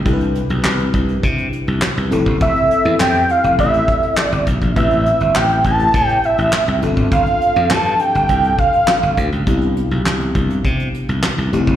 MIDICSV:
0, 0, Header, 1, 5, 480
1, 0, Start_track
1, 0, Tempo, 588235
1, 47, Time_signature, 4, 2, 24, 8
1, 9596, End_track
2, 0, Start_track
2, 0, Title_t, "Analog synth lead"
2, 0, Program_c, 0, 81
2, 1977, Note_on_c, 0, 76, 104
2, 2419, Note_off_c, 0, 76, 0
2, 2458, Note_on_c, 0, 79, 106
2, 2699, Note_on_c, 0, 77, 92
2, 2711, Note_off_c, 0, 79, 0
2, 2933, Note_off_c, 0, 77, 0
2, 2939, Note_on_c, 0, 76, 96
2, 3429, Note_off_c, 0, 76, 0
2, 3429, Note_on_c, 0, 74, 96
2, 3620, Note_off_c, 0, 74, 0
2, 3892, Note_on_c, 0, 76, 87
2, 4373, Note_on_c, 0, 79, 88
2, 4385, Note_off_c, 0, 76, 0
2, 4608, Note_off_c, 0, 79, 0
2, 4613, Note_on_c, 0, 81, 105
2, 4956, Note_off_c, 0, 81, 0
2, 4956, Note_on_c, 0, 79, 105
2, 5097, Note_on_c, 0, 76, 95
2, 5110, Note_off_c, 0, 79, 0
2, 5572, Note_off_c, 0, 76, 0
2, 5813, Note_on_c, 0, 77, 91
2, 6293, Note_on_c, 0, 81, 97
2, 6305, Note_off_c, 0, 77, 0
2, 6530, Note_on_c, 0, 79, 104
2, 6543, Note_off_c, 0, 81, 0
2, 7010, Note_on_c, 0, 77, 98
2, 7022, Note_off_c, 0, 79, 0
2, 7488, Note_off_c, 0, 77, 0
2, 9596, End_track
3, 0, Start_track
3, 0, Title_t, "FM electric piano"
3, 0, Program_c, 1, 5
3, 40, Note_on_c, 1, 62, 60
3, 46, Note_on_c, 1, 64, 61
3, 49, Note_on_c, 1, 67, 62
3, 54, Note_on_c, 1, 69, 54
3, 104, Note_off_c, 1, 69, 0
3, 107, Note_on_c, 1, 71, 71
3, 1691, Note_off_c, 1, 62, 0
3, 1694, Note_off_c, 1, 64, 0
3, 1695, Note_off_c, 1, 67, 0
3, 1718, Note_on_c, 1, 60, 78
3, 1723, Note_on_c, 1, 64, 70
3, 1725, Note_off_c, 1, 71, 0
3, 1726, Note_on_c, 1, 67, 73
3, 1732, Note_on_c, 1, 69, 86
3, 3610, Note_off_c, 1, 60, 0
3, 3612, Note_off_c, 1, 64, 0
3, 3614, Note_off_c, 1, 67, 0
3, 3617, Note_off_c, 1, 69, 0
3, 3881, Note_on_c, 1, 60, 50
3, 3885, Note_on_c, 1, 64, 52
3, 3889, Note_on_c, 1, 67, 49
3, 3894, Note_on_c, 1, 71, 60
3, 5532, Note_off_c, 1, 60, 0
3, 5534, Note_off_c, 1, 64, 0
3, 5535, Note_off_c, 1, 67, 0
3, 5538, Note_off_c, 1, 71, 0
3, 5563, Note_on_c, 1, 59, 54
3, 5566, Note_on_c, 1, 62, 57
3, 5571, Note_on_c, 1, 65, 59
3, 5575, Note_on_c, 1, 69, 75
3, 5615, Note_on_c, 1, 60, 60
3, 5618, Note_off_c, 1, 59, 0
3, 7454, Note_off_c, 1, 62, 0
3, 7456, Note_off_c, 1, 65, 0
3, 7459, Note_off_c, 1, 69, 0
3, 7478, Note_off_c, 1, 60, 0
3, 7720, Note_on_c, 1, 59, 66
3, 7725, Note_on_c, 1, 62, 61
3, 7730, Note_on_c, 1, 64, 64
3, 7734, Note_on_c, 1, 67, 70
3, 9371, Note_off_c, 1, 59, 0
3, 9374, Note_off_c, 1, 62, 0
3, 9376, Note_off_c, 1, 64, 0
3, 9378, Note_off_c, 1, 67, 0
3, 9400, Note_on_c, 1, 57, 77
3, 9403, Note_on_c, 1, 60, 68
3, 9408, Note_on_c, 1, 64, 67
3, 9412, Note_on_c, 1, 67, 86
3, 9596, Note_off_c, 1, 57, 0
3, 9596, Note_off_c, 1, 60, 0
3, 9596, Note_off_c, 1, 64, 0
3, 9596, Note_off_c, 1, 67, 0
3, 9596, End_track
4, 0, Start_track
4, 0, Title_t, "Slap bass"
4, 0, Program_c, 2, 36
4, 48, Note_on_c, 2, 36, 93
4, 331, Note_off_c, 2, 36, 0
4, 409, Note_on_c, 2, 35, 87
4, 502, Note_off_c, 2, 35, 0
4, 529, Note_on_c, 2, 36, 100
4, 717, Note_off_c, 2, 36, 0
4, 766, Note_on_c, 2, 36, 87
4, 956, Note_off_c, 2, 36, 0
4, 1008, Note_on_c, 2, 48, 97
4, 1197, Note_off_c, 2, 48, 0
4, 1369, Note_on_c, 2, 36, 79
4, 1463, Note_off_c, 2, 36, 0
4, 1611, Note_on_c, 2, 36, 91
4, 1704, Note_off_c, 2, 36, 0
4, 1730, Note_on_c, 2, 29, 91
4, 1823, Note_off_c, 2, 29, 0
4, 1847, Note_on_c, 2, 30, 84
4, 1942, Note_off_c, 2, 30, 0
4, 1967, Note_on_c, 2, 29, 96
4, 2062, Note_off_c, 2, 29, 0
4, 2327, Note_on_c, 2, 40, 80
4, 2421, Note_off_c, 2, 40, 0
4, 2448, Note_on_c, 2, 41, 97
4, 2636, Note_off_c, 2, 41, 0
4, 2807, Note_on_c, 2, 29, 85
4, 2901, Note_off_c, 2, 29, 0
4, 2928, Note_on_c, 2, 33, 94
4, 3116, Note_off_c, 2, 33, 0
4, 3528, Note_on_c, 2, 31, 88
4, 3622, Note_off_c, 2, 31, 0
4, 3647, Note_on_c, 2, 35, 84
4, 3741, Note_off_c, 2, 35, 0
4, 3767, Note_on_c, 2, 34, 81
4, 3862, Note_off_c, 2, 34, 0
4, 3887, Note_on_c, 2, 33, 92
4, 4170, Note_off_c, 2, 33, 0
4, 4249, Note_on_c, 2, 31, 83
4, 4342, Note_off_c, 2, 31, 0
4, 4368, Note_on_c, 2, 33, 106
4, 4556, Note_off_c, 2, 33, 0
4, 4607, Note_on_c, 2, 33, 83
4, 4796, Note_off_c, 2, 33, 0
4, 4848, Note_on_c, 2, 45, 90
4, 5037, Note_off_c, 2, 45, 0
4, 5209, Note_on_c, 2, 33, 71
4, 5303, Note_off_c, 2, 33, 0
4, 5449, Note_on_c, 2, 36, 94
4, 5543, Note_off_c, 2, 36, 0
4, 5570, Note_on_c, 2, 31, 93
4, 5663, Note_off_c, 2, 31, 0
4, 5687, Note_on_c, 2, 32, 72
4, 5782, Note_off_c, 2, 32, 0
4, 5808, Note_on_c, 2, 31, 102
4, 5902, Note_off_c, 2, 31, 0
4, 6170, Note_on_c, 2, 41, 85
4, 6263, Note_off_c, 2, 41, 0
4, 6289, Note_on_c, 2, 43, 99
4, 6477, Note_off_c, 2, 43, 0
4, 6651, Note_on_c, 2, 31, 79
4, 6744, Note_off_c, 2, 31, 0
4, 6767, Note_on_c, 2, 36, 81
4, 6956, Note_off_c, 2, 36, 0
4, 7368, Note_on_c, 2, 31, 91
4, 7462, Note_off_c, 2, 31, 0
4, 7487, Note_on_c, 2, 38, 94
4, 7581, Note_off_c, 2, 38, 0
4, 7607, Note_on_c, 2, 37, 87
4, 7701, Note_off_c, 2, 37, 0
4, 7727, Note_on_c, 2, 36, 110
4, 8010, Note_off_c, 2, 36, 0
4, 8088, Note_on_c, 2, 35, 83
4, 8182, Note_off_c, 2, 35, 0
4, 8207, Note_on_c, 2, 36, 93
4, 8396, Note_off_c, 2, 36, 0
4, 8447, Note_on_c, 2, 36, 88
4, 8636, Note_off_c, 2, 36, 0
4, 8687, Note_on_c, 2, 48, 91
4, 8876, Note_off_c, 2, 48, 0
4, 9048, Note_on_c, 2, 36, 74
4, 9142, Note_off_c, 2, 36, 0
4, 9286, Note_on_c, 2, 36, 89
4, 9381, Note_off_c, 2, 36, 0
4, 9407, Note_on_c, 2, 29, 84
4, 9501, Note_off_c, 2, 29, 0
4, 9526, Note_on_c, 2, 30, 81
4, 9596, Note_off_c, 2, 30, 0
4, 9596, End_track
5, 0, Start_track
5, 0, Title_t, "Drums"
5, 45, Note_on_c, 9, 42, 76
5, 47, Note_on_c, 9, 36, 102
5, 127, Note_off_c, 9, 42, 0
5, 129, Note_off_c, 9, 36, 0
5, 166, Note_on_c, 9, 42, 48
5, 248, Note_off_c, 9, 42, 0
5, 289, Note_on_c, 9, 42, 76
5, 370, Note_off_c, 9, 42, 0
5, 404, Note_on_c, 9, 42, 48
5, 486, Note_off_c, 9, 42, 0
5, 525, Note_on_c, 9, 39, 84
5, 526, Note_on_c, 9, 38, 103
5, 607, Note_off_c, 9, 39, 0
5, 608, Note_off_c, 9, 38, 0
5, 641, Note_on_c, 9, 42, 50
5, 722, Note_off_c, 9, 42, 0
5, 762, Note_on_c, 9, 42, 63
5, 766, Note_on_c, 9, 36, 96
5, 844, Note_off_c, 9, 42, 0
5, 848, Note_off_c, 9, 36, 0
5, 887, Note_on_c, 9, 42, 54
5, 969, Note_off_c, 9, 42, 0
5, 1005, Note_on_c, 9, 42, 71
5, 1007, Note_on_c, 9, 36, 95
5, 1087, Note_off_c, 9, 42, 0
5, 1089, Note_off_c, 9, 36, 0
5, 1127, Note_on_c, 9, 42, 49
5, 1209, Note_off_c, 9, 42, 0
5, 1247, Note_on_c, 9, 42, 59
5, 1328, Note_off_c, 9, 42, 0
5, 1365, Note_on_c, 9, 42, 50
5, 1447, Note_off_c, 9, 42, 0
5, 1482, Note_on_c, 9, 39, 85
5, 1483, Note_on_c, 9, 38, 103
5, 1564, Note_off_c, 9, 39, 0
5, 1565, Note_off_c, 9, 38, 0
5, 1607, Note_on_c, 9, 42, 52
5, 1688, Note_off_c, 9, 42, 0
5, 1727, Note_on_c, 9, 42, 85
5, 1809, Note_off_c, 9, 42, 0
5, 1847, Note_on_c, 9, 36, 80
5, 1848, Note_on_c, 9, 42, 42
5, 1928, Note_off_c, 9, 36, 0
5, 1929, Note_off_c, 9, 42, 0
5, 1964, Note_on_c, 9, 42, 84
5, 1967, Note_on_c, 9, 36, 109
5, 2046, Note_off_c, 9, 42, 0
5, 2048, Note_off_c, 9, 36, 0
5, 2086, Note_on_c, 9, 42, 47
5, 2168, Note_off_c, 9, 42, 0
5, 2210, Note_on_c, 9, 42, 74
5, 2291, Note_off_c, 9, 42, 0
5, 2325, Note_on_c, 9, 42, 45
5, 2406, Note_off_c, 9, 42, 0
5, 2448, Note_on_c, 9, 39, 86
5, 2449, Note_on_c, 9, 38, 112
5, 2530, Note_off_c, 9, 39, 0
5, 2531, Note_off_c, 9, 38, 0
5, 2562, Note_on_c, 9, 42, 51
5, 2644, Note_off_c, 9, 42, 0
5, 2686, Note_on_c, 9, 42, 64
5, 2767, Note_off_c, 9, 42, 0
5, 2809, Note_on_c, 9, 42, 53
5, 2890, Note_off_c, 9, 42, 0
5, 2927, Note_on_c, 9, 36, 88
5, 2927, Note_on_c, 9, 42, 76
5, 3009, Note_off_c, 9, 36, 0
5, 3009, Note_off_c, 9, 42, 0
5, 3050, Note_on_c, 9, 42, 52
5, 3131, Note_off_c, 9, 42, 0
5, 3166, Note_on_c, 9, 36, 94
5, 3168, Note_on_c, 9, 42, 60
5, 3248, Note_off_c, 9, 36, 0
5, 3250, Note_off_c, 9, 42, 0
5, 3285, Note_on_c, 9, 42, 46
5, 3367, Note_off_c, 9, 42, 0
5, 3403, Note_on_c, 9, 39, 82
5, 3404, Note_on_c, 9, 38, 106
5, 3485, Note_off_c, 9, 39, 0
5, 3486, Note_off_c, 9, 38, 0
5, 3527, Note_on_c, 9, 42, 54
5, 3608, Note_off_c, 9, 42, 0
5, 3647, Note_on_c, 9, 36, 86
5, 3647, Note_on_c, 9, 42, 87
5, 3728, Note_off_c, 9, 36, 0
5, 3729, Note_off_c, 9, 42, 0
5, 3767, Note_on_c, 9, 36, 80
5, 3768, Note_on_c, 9, 42, 45
5, 3848, Note_off_c, 9, 36, 0
5, 3849, Note_off_c, 9, 42, 0
5, 3885, Note_on_c, 9, 42, 83
5, 3887, Note_on_c, 9, 36, 101
5, 3967, Note_off_c, 9, 42, 0
5, 3969, Note_off_c, 9, 36, 0
5, 4005, Note_on_c, 9, 42, 46
5, 4087, Note_off_c, 9, 42, 0
5, 4130, Note_on_c, 9, 42, 73
5, 4212, Note_off_c, 9, 42, 0
5, 4246, Note_on_c, 9, 42, 51
5, 4327, Note_off_c, 9, 42, 0
5, 4368, Note_on_c, 9, 39, 89
5, 4370, Note_on_c, 9, 38, 105
5, 4450, Note_off_c, 9, 39, 0
5, 4451, Note_off_c, 9, 38, 0
5, 4482, Note_on_c, 9, 42, 46
5, 4564, Note_off_c, 9, 42, 0
5, 4603, Note_on_c, 9, 42, 70
5, 4607, Note_on_c, 9, 36, 87
5, 4685, Note_off_c, 9, 42, 0
5, 4688, Note_off_c, 9, 36, 0
5, 4729, Note_on_c, 9, 42, 57
5, 4810, Note_off_c, 9, 42, 0
5, 4846, Note_on_c, 9, 42, 71
5, 4848, Note_on_c, 9, 36, 98
5, 4928, Note_off_c, 9, 42, 0
5, 4929, Note_off_c, 9, 36, 0
5, 4969, Note_on_c, 9, 42, 49
5, 5051, Note_off_c, 9, 42, 0
5, 5088, Note_on_c, 9, 42, 55
5, 5169, Note_off_c, 9, 42, 0
5, 5206, Note_on_c, 9, 42, 51
5, 5288, Note_off_c, 9, 42, 0
5, 5324, Note_on_c, 9, 39, 77
5, 5325, Note_on_c, 9, 38, 105
5, 5406, Note_off_c, 9, 39, 0
5, 5407, Note_off_c, 9, 38, 0
5, 5448, Note_on_c, 9, 42, 56
5, 5530, Note_off_c, 9, 42, 0
5, 5568, Note_on_c, 9, 42, 79
5, 5649, Note_off_c, 9, 42, 0
5, 5687, Note_on_c, 9, 36, 78
5, 5688, Note_on_c, 9, 42, 43
5, 5769, Note_off_c, 9, 36, 0
5, 5770, Note_off_c, 9, 42, 0
5, 5806, Note_on_c, 9, 42, 86
5, 5808, Note_on_c, 9, 36, 117
5, 5888, Note_off_c, 9, 42, 0
5, 5889, Note_off_c, 9, 36, 0
5, 5927, Note_on_c, 9, 42, 54
5, 6008, Note_off_c, 9, 42, 0
5, 6050, Note_on_c, 9, 42, 76
5, 6131, Note_off_c, 9, 42, 0
5, 6165, Note_on_c, 9, 42, 47
5, 6247, Note_off_c, 9, 42, 0
5, 6287, Note_on_c, 9, 39, 85
5, 6288, Note_on_c, 9, 38, 115
5, 6369, Note_off_c, 9, 39, 0
5, 6370, Note_off_c, 9, 38, 0
5, 6403, Note_on_c, 9, 42, 47
5, 6485, Note_off_c, 9, 42, 0
5, 6524, Note_on_c, 9, 42, 70
5, 6605, Note_off_c, 9, 42, 0
5, 6649, Note_on_c, 9, 42, 55
5, 6730, Note_off_c, 9, 42, 0
5, 6765, Note_on_c, 9, 42, 81
5, 6767, Note_on_c, 9, 36, 85
5, 6847, Note_off_c, 9, 42, 0
5, 6848, Note_off_c, 9, 36, 0
5, 6889, Note_on_c, 9, 42, 51
5, 6970, Note_off_c, 9, 42, 0
5, 7006, Note_on_c, 9, 36, 86
5, 7008, Note_on_c, 9, 42, 60
5, 7087, Note_off_c, 9, 36, 0
5, 7089, Note_off_c, 9, 42, 0
5, 7126, Note_on_c, 9, 42, 52
5, 7208, Note_off_c, 9, 42, 0
5, 7244, Note_on_c, 9, 39, 90
5, 7245, Note_on_c, 9, 38, 102
5, 7325, Note_off_c, 9, 39, 0
5, 7326, Note_off_c, 9, 38, 0
5, 7367, Note_on_c, 9, 42, 54
5, 7449, Note_off_c, 9, 42, 0
5, 7486, Note_on_c, 9, 36, 85
5, 7488, Note_on_c, 9, 42, 84
5, 7568, Note_off_c, 9, 36, 0
5, 7570, Note_off_c, 9, 42, 0
5, 7608, Note_on_c, 9, 42, 44
5, 7690, Note_off_c, 9, 42, 0
5, 7726, Note_on_c, 9, 42, 82
5, 7727, Note_on_c, 9, 36, 109
5, 7808, Note_off_c, 9, 36, 0
5, 7808, Note_off_c, 9, 42, 0
5, 7847, Note_on_c, 9, 42, 51
5, 7928, Note_off_c, 9, 42, 0
5, 7970, Note_on_c, 9, 42, 81
5, 8052, Note_off_c, 9, 42, 0
5, 8087, Note_on_c, 9, 42, 50
5, 8169, Note_off_c, 9, 42, 0
5, 8210, Note_on_c, 9, 39, 81
5, 8211, Note_on_c, 9, 38, 113
5, 8291, Note_off_c, 9, 39, 0
5, 8292, Note_off_c, 9, 38, 0
5, 8326, Note_on_c, 9, 42, 50
5, 8407, Note_off_c, 9, 42, 0
5, 8446, Note_on_c, 9, 42, 68
5, 8447, Note_on_c, 9, 36, 88
5, 8527, Note_off_c, 9, 42, 0
5, 8528, Note_off_c, 9, 36, 0
5, 8570, Note_on_c, 9, 42, 55
5, 8652, Note_off_c, 9, 42, 0
5, 8687, Note_on_c, 9, 36, 97
5, 8689, Note_on_c, 9, 42, 69
5, 8769, Note_off_c, 9, 36, 0
5, 8770, Note_off_c, 9, 42, 0
5, 8810, Note_on_c, 9, 42, 50
5, 8891, Note_off_c, 9, 42, 0
5, 8929, Note_on_c, 9, 42, 60
5, 9011, Note_off_c, 9, 42, 0
5, 9047, Note_on_c, 9, 42, 48
5, 9128, Note_off_c, 9, 42, 0
5, 9165, Note_on_c, 9, 39, 84
5, 9166, Note_on_c, 9, 38, 95
5, 9247, Note_off_c, 9, 39, 0
5, 9248, Note_off_c, 9, 38, 0
5, 9289, Note_on_c, 9, 42, 50
5, 9370, Note_off_c, 9, 42, 0
5, 9409, Note_on_c, 9, 42, 82
5, 9490, Note_off_c, 9, 42, 0
5, 9526, Note_on_c, 9, 36, 86
5, 9527, Note_on_c, 9, 42, 43
5, 9596, Note_off_c, 9, 36, 0
5, 9596, Note_off_c, 9, 42, 0
5, 9596, End_track
0, 0, End_of_file